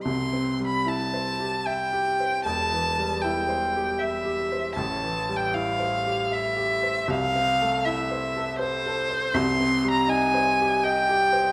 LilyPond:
<<
  \new Staff \with { instrumentName = "Violin" } { \time 3/4 \key c \major \tempo 4 = 78 c'''8. b''16 a''4 g''4 | a''4 g''4 e''4 | a''8. g''16 f''4 e''4 | f''4 e''4 c''4 |
\key c \minor c'''8. bes''16 aes''4 g''4 | }
  \new Staff \with { instrumentName = "Grand piano" } { \time 3/4 \key c \major \tuplet 3/2 { <c, c>8 c'8 g8 e'8 c''8 g'8 e''8 g'8 c''8 } | \tuplet 3/2 { <e,, e,>8 e8 g8 e'8 c''8 g'8 e''8 g'8 c''8 } | \tuplet 3/2 { <a,, a,>8 e8 g8 e'8 c''8 g'8 e''8 g'8 c''8 } | \tuplet 3/2 { <c, c>8 c'8 a8 e'8 c''8 a'8 c''8 a'8 c''8 } |
\key c \minor \tuplet 3/2 { <c, c>8 c'8 g8 ees'8 c''8 g'8 ees''8 g'8 c''8 } | }
>>